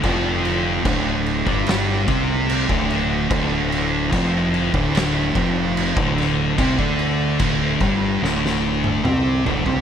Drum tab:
CC |x-x-x-x-x-x-x-x-|x-x-x-x-x-x-x-x-|x-x-x-x---------|
SD |--------o-------|--------o-----o-|--------oo------|
T1 |----------------|----------------|-----------o----|
T2 |----------------|----------------|------------o---|
FT |----------------|----------------|--------------oo|
BD |o---o--o--o--o--|o---o--o--o--o--|oo--o-o---------|